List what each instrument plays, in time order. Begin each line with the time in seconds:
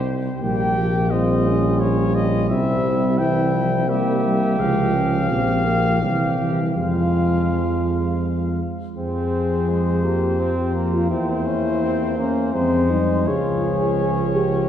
Already playing: tuba C2
0.41 tuba A#1, trombone G3, french horn A#3, flugelhorn G4, trumpet G5
0.78 trombone F3
1.11 trombone G3, french horn C4, flugelhorn F4, trumpet D#5
1.47 french horn C#4
1.80 french horn C#4, trumpet C#5
2.15 trumpet D#5
2.50 tuba C2, french horn C4, flugelhorn E4, trumpet E5
3.18 trombone E3, french horn C4, trumpet G5
3.54 trombone F3
3.88 trombone G3, french horn A#3, flugelhorn G4, trumpet E5
4.24 trombone G3
4.58 tuba C#2, trombone F3, french horn G#3, trumpet F5
4.94 french horn C#4
5.30 tuba A#1, french horn C4, flugelhorn G4
5.66 french horn A#3
6.01 tuba C2, trombone E3, french horn G3, flugelhorn G4
6.40 trombone E3
6.75 tuba F2, trombone F3, french horn G#3, flugelhorn F4, trumpet F5
8.97 tuba F2, trombone F3, flugelhorn C4, french horn G#4, trumpet C5
9.69 flugelhorn G#3
10.03 flugelhorn A#3, french horn G4
10.39 flugelhorn C4
10.74 flugelhorn A#3
10.94 french horn F4
11.10 tuba E2, trombone A#3, flugelhorn C4, french horn E4, trumpet C5
11.46 flugelhorn C#4
11.82 flugelhorn C4
12.18 flugelhorn A#3, french horn C#4
12.53 tuba F2, trombone G#3, flugelhorn G#3, french horn C4, trumpet C5
12.91 trombone G3, french horn D#4
13.27 tuba C#2, trombone F3, flugelhorn F4, french horn G#4, trumpet C#5
13.63 flugelhorn C#4
14.35 french horn G4